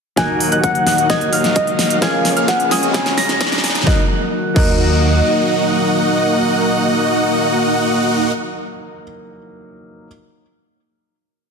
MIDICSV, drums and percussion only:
0, 0, Header, 1, 2, 480
1, 0, Start_track
1, 0, Key_signature, -6, "minor"
1, 0, Tempo, 461538
1, 182, Time_signature, 4, 2, 24, 8
1, 11964, End_track
2, 0, Start_track
2, 0, Title_t, "Drums"
2, 180, Note_on_c, 9, 38, 47
2, 180, Note_on_c, 9, 42, 78
2, 181, Note_on_c, 9, 36, 116
2, 284, Note_off_c, 9, 38, 0
2, 284, Note_off_c, 9, 42, 0
2, 285, Note_off_c, 9, 36, 0
2, 421, Note_on_c, 9, 46, 102
2, 525, Note_off_c, 9, 46, 0
2, 541, Note_on_c, 9, 42, 52
2, 645, Note_off_c, 9, 42, 0
2, 661, Note_on_c, 9, 36, 113
2, 661, Note_on_c, 9, 42, 82
2, 765, Note_off_c, 9, 36, 0
2, 765, Note_off_c, 9, 42, 0
2, 781, Note_on_c, 9, 42, 39
2, 885, Note_off_c, 9, 42, 0
2, 900, Note_on_c, 9, 38, 57
2, 900, Note_on_c, 9, 46, 107
2, 1004, Note_off_c, 9, 38, 0
2, 1004, Note_off_c, 9, 46, 0
2, 1021, Note_on_c, 9, 42, 54
2, 1125, Note_off_c, 9, 42, 0
2, 1141, Note_on_c, 9, 36, 118
2, 1141, Note_on_c, 9, 38, 60
2, 1141, Note_on_c, 9, 42, 83
2, 1245, Note_off_c, 9, 36, 0
2, 1245, Note_off_c, 9, 38, 0
2, 1245, Note_off_c, 9, 42, 0
2, 1260, Note_on_c, 9, 42, 37
2, 1364, Note_off_c, 9, 42, 0
2, 1379, Note_on_c, 9, 46, 107
2, 1483, Note_off_c, 9, 46, 0
2, 1499, Note_on_c, 9, 38, 56
2, 1499, Note_on_c, 9, 42, 54
2, 1603, Note_off_c, 9, 38, 0
2, 1603, Note_off_c, 9, 42, 0
2, 1619, Note_on_c, 9, 42, 81
2, 1621, Note_on_c, 9, 36, 117
2, 1723, Note_off_c, 9, 42, 0
2, 1725, Note_off_c, 9, 36, 0
2, 1740, Note_on_c, 9, 42, 38
2, 1844, Note_off_c, 9, 42, 0
2, 1860, Note_on_c, 9, 38, 69
2, 1860, Note_on_c, 9, 46, 105
2, 1964, Note_off_c, 9, 38, 0
2, 1964, Note_off_c, 9, 46, 0
2, 1980, Note_on_c, 9, 42, 55
2, 2084, Note_off_c, 9, 42, 0
2, 2100, Note_on_c, 9, 38, 74
2, 2100, Note_on_c, 9, 42, 82
2, 2102, Note_on_c, 9, 36, 125
2, 2204, Note_off_c, 9, 38, 0
2, 2204, Note_off_c, 9, 42, 0
2, 2206, Note_off_c, 9, 36, 0
2, 2340, Note_on_c, 9, 38, 79
2, 2340, Note_on_c, 9, 46, 111
2, 2444, Note_off_c, 9, 38, 0
2, 2444, Note_off_c, 9, 46, 0
2, 2460, Note_on_c, 9, 42, 52
2, 2564, Note_off_c, 9, 42, 0
2, 2580, Note_on_c, 9, 38, 84
2, 2580, Note_on_c, 9, 42, 82
2, 2582, Note_on_c, 9, 36, 121
2, 2684, Note_off_c, 9, 38, 0
2, 2684, Note_off_c, 9, 42, 0
2, 2686, Note_off_c, 9, 36, 0
2, 2701, Note_on_c, 9, 42, 38
2, 2805, Note_off_c, 9, 42, 0
2, 2821, Note_on_c, 9, 38, 89
2, 2821, Note_on_c, 9, 46, 113
2, 2925, Note_off_c, 9, 38, 0
2, 2925, Note_off_c, 9, 46, 0
2, 2941, Note_on_c, 9, 42, 53
2, 3045, Note_off_c, 9, 42, 0
2, 3061, Note_on_c, 9, 38, 94
2, 3061, Note_on_c, 9, 42, 85
2, 3062, Note_on_c, 9, 36, 124
2, 3165, Note_off_c, 9, 38, 0
2, 3165, Note_off_c, 9, 42, 0
2, 3166, Note_off_c, 9, 36, 0
2, 3182, Note_on_c, 9, 38, 84
2, 3182, Note_on_c, 9, 42, 38
2, 3286, Note_off_c, 9, 38, 0
2, 3286, Note_off_c, 9, 42, 0
2, 3302, Note_on_c, 9, 38, 100
2, 3302, Note_on_c, 9, 46, 114
2, 3406, Note_off_c, 9, 38, 0
2, 3406, Note_off_c, 9, 46, 0
2, 3423, Note_on_c, 9, 38, 88
2, 3423, Note_on_c, 9, 42, 54
2, 3527, Note_off_c, 9, 38, 0
2, 3527, Note_off_c, 9, 42, 0
2, 3542, Note_on_c, 9, 38, 103
2, 3542, Note_on_c, 9, 42, 82
2, 3543, Note_on_c, 9, 36, 124
2, 3603, Note_off_c, 9, 38, 0
2, 3603, Note_on_c, 9, 38, 91
2, 3646, Note_off_c, 9, 42, 0
2, 3647, Note_off_c, 9, 36, 0
2, 3662, Note_off_c, 9, 38, 0
2, 3662, Note_on_c, 9, 38, 91
2, 3662, Note_on_c, 9, 42, 39
2, 3722, Note_off_c, 9, 38, 0
2, 3722, Note_on_c, 9, 38, 92
2, 3766, Note_off_c, 9, 42, 0
2, 3783, Note_off_c, 9, 38, 0
2, 3783, Note_on_c, 9, 38, 109
2, 3783, Note_on_c, 9, 46, 114
2, 3843, Note_off_c, 9, 38, 0
2, 3843, Note_on_c, 9, 38, 96
2, 3887, Note_off_c, 9, 46, 0
2, 3902, Note_off_c, 9, 38, 0
2, 3902, Note_on_c, 9, 38, 96
2, 3902, Note_on_c, 9, 42, 54
2, 3963, Note_off_c, 9, 38, 0
2, 3963, Note_on_c, 9, 38, 96
2, 4007, Note_off_c, 9, 42, 0
2, 4023, Note_off_c, 9, 38, 0
2, 4023, Note_on_c, 9, 36, 115
2, 4023, Note_on_c, 9, 38, 89
2, 4127, Note_off_c, 9, 36, 0
2, 4127, Note_off_c, 9, 38, 0
2, 4742, Note_on_c, 9, 36, 114
2, 4743, Note_on_c, 9, 49, 89
2, 4846, Note_off_c, 9, 36, 0
2, 4847, Note_off_c, 9, 49, 0
2, 11964, End_track
0, 0, End_of_file